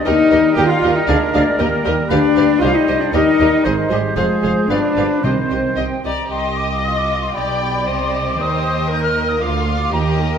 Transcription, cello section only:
\new Staff \with { instrumentName = "Cello section" } { \time 2/4 \key c \minor \tempo 4 = 116 ees'4 g'16 f'8 ees'16 | d'8 d'8 bes8 r8 | d'4 f'16 ees'8 d'16 | ees'4 ees8 g8 |
aes4 d'4 | c'4. r8 | c,2 | b,4 c4 |
ees2 | d4 ees4 | }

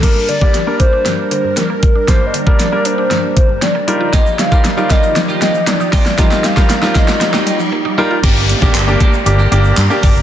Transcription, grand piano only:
\new Staff \with { instrumentName = "Grand piano" } { \time 4/4 \key g \minor \tempo 4 = 117 <g bes d' bes'>8 r16 <g bes d' g'>16 r16 <g bes d' bes'>4~ <g bes d' bes'>16 r4. | <g bes d' c''>8 r16 <g bes d' bes'>16 r16 <g bes d' bes'>4~ <g bes d' bes'>16 r4 <g ees' f' bes'>8~ | <g ees' f' bes'>8 r16 <g ees' f' bes'>16 r16 <g ees' f' bes'>4~ <g ees' f' bes'>16 r4. | <g ees' f' bes'>8 r16 <g ees' f' bes'>16 r16 <g ees' f' bes'>4~ <g ees' f' bes'>16 r4 <g ees' f' bes'>16 r16 |
<bes d' g'>8 r16 <bes d' g'>16 r16 <bes d' g'>8 r16 <bes d' g'>16 r16 <bes d' g'>8 r16 <bes d' g'>8 r16 | }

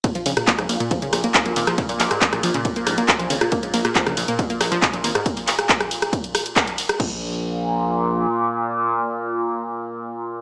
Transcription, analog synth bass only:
\new Staff \with { instrumentName = "Analog synth bass" } { \clef bass \time 4/4 \key aes \mixolydian \tempo 4 = 138 r8 bes,,16 r16 bes,,16 bes,,16 bes,,16 bes,16 r8 bes,,16 r8 bes,,16 aes,,16 r16 | r8 bes,,16 r16 bes,,16 bes,,16 bes,,16 bes,16 r8 bes,,16 r8 bes,,16 aes,,16 r16 | r8 bes,,16 r16 bes,,16 bes,,16 bes,,16 bes,16 r8 bes,,16 r8 bes,,16 aes,,16 r16 | r1 |
bes,,2. r4 | r1 | }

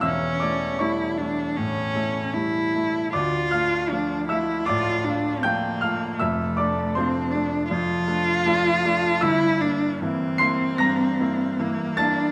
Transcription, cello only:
\new Staff \with { instrumentName = "Cello" } { \time 4/4 \key d \minor \tempo 4 = 78 cis'4 e'8 d'8 cis'4 e'4 | f'4 d'8 e'8 f'8 d'8 bes4 | a4 c'8 d'8 f'2 | e'8 d'8 c'2 bes8 d'8 | }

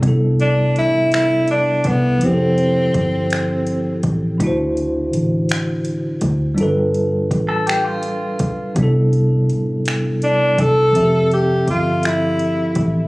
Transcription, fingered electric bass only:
\new Staff \with { instrumentName = "Fingered electric bass" } { \clef bass \time 6/8 \key c \major \tempo 4. = 55 c,4 a,,4. c,8 | f,,4 g,,4. a,,8 | d,4 a,,4. d,8 | g,,4 a,,4. g,,8 |
c,4 a,,4. c,8 | f,,4 g,,4. a,,8 | }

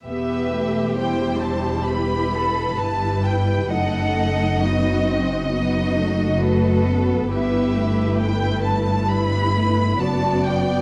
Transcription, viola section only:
\new Staff \with { instrumentName = "Viola section" } { \time 4/4 \key e \minor \tempo 4 = 67 << { g'4 e'4 e'4 e'4 | dis'2 dis'4 fis'4 | e'2 e'4 fis'4 | } \\ { b8 a8 g2 g4 | a4 b8 c'8 b8 a8 a8 b8 | b8 a4. g8 a8 b4 | } >> }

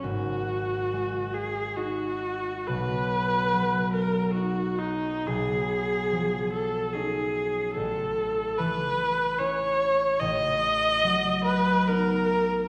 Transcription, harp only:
\new Staff \with { instrumentName = "Harp" } { \time 3/4 \key b \mixolydian \tempo 4 = 72 <gis,, dis' fis'>4 gis4 dis'4 | b,,4 fis4 dis'4 | b,,4 eis4 <cis' dis'>4 | a,,4 e4 <cis' e'>4 |
a,,4 fis4 <b dis'>4 | }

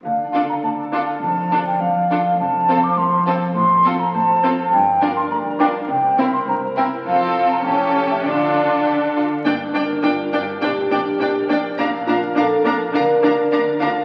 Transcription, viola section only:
\new Staff \with { instrumentName = "Viola section" } { \time 2/4 \key d \minor \tempo 4 = 102 r8 d'8 r8 d'8 | r8 d'8 r8 d'8 | r8 c'8 r8 c'8 | r8 c'8 r8 c'8 |
r8 d'8 r8 d'8 | r8 c'8 r8 c'8 | c'4 cis'4 | d'4. r8 |
\key g \minor d'8 d'8 d'8 d'8 | d'8 d'8 d'8 d'8 | d'8 d'8 d'8 d'8 | d'8 d'8 d'8 d'8 | }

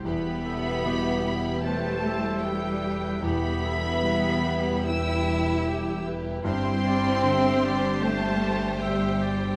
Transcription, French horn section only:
\new Staff \with { instrumentName = "French horn section" } { \time 4/4 \key e \phrygian \tempo 4 = 76 b2 a4 g4 | b2 e'4. r8 | c'2 a4 g4 | }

